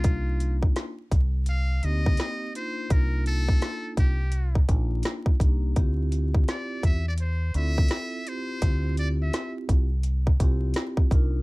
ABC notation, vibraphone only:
X:1
M:4/4
L:1/8
Q:"Swing 16ths" 1/4=84
K:Cdor
V:1 name="Vibraphone"
[B,DEF]2 z3 [B,CEG]2 [B,DEF] | [B,DEF]3 z2 [B,DEF]2 [B,DEG] | [C=EFG]3 z2 [CEFA]2 [CEFG] | [C=EFG]3 z2 [CEFG]2 [D_EFB] |]